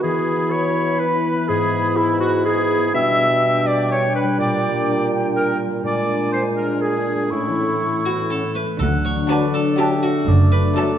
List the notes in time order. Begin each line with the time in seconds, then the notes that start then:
Already playing: B3 F#4 B4
0.01 E3 B3 G#4 B5
0.18 B3
0.35 E4
0.50 B4 C#5
0.67 E4
0.84 E5
1.00 E4 B4
1.16 E4
1.33 B3
1.48 G#2 G#4
1.65 G#3
1.81 B3
1.96 E4
2.13 B4
2.20 F#4
2.29 E4
2.45 G#4 B4
2.61 E4
2.78 B3
2.93 B2 G3 D4 E5 G5
3.10 B3
3.27 G3
3.43 D4
3.59 D5
3.67 D5
3.75 G4
3.91 C#5 D5
4.07 D4
4.15 B4
4.23 G3
4.39 A#2 D5
4.55 A#3
4.72 G3
4.88 D4
5.04 D5
5.20 G4
5.35 A#4 D5
5.52 D4
5.67 G3
5.83 A#2 G#3 D4 D5 G#5
6.00 A#3
6.16 G#3
6.32 D4 C5
6.48 D5
6.57 A#4
6.65 G#4
6.81 G#4 D5 G#5
6.98 D4
7.15 G#3
7.30 A2 A3 C#4 E4 C#6
7.48 E3
7.65 A3
7.80 A3 C#4
7.98 A4
8.06 B3 F#4
8.14 C#4
8.30 C#4 A4
8.47 C#4
8.55 A3 B4
8.64 A3
8.79 D2 D3 F#3 D4 A4 F#5
9.05 D4 C#5
9.29 F#3 D4 F#4 A4 B4 D5 A5
9.54 A4 D5
9.78 F#3 D4 F#4 G4 A4 E5 A5
10.03 D4 F#4
10.28 F#1 F#2 A3 D5
10.52 A3 B4
10.75 F#3 A3 D4 A4 A5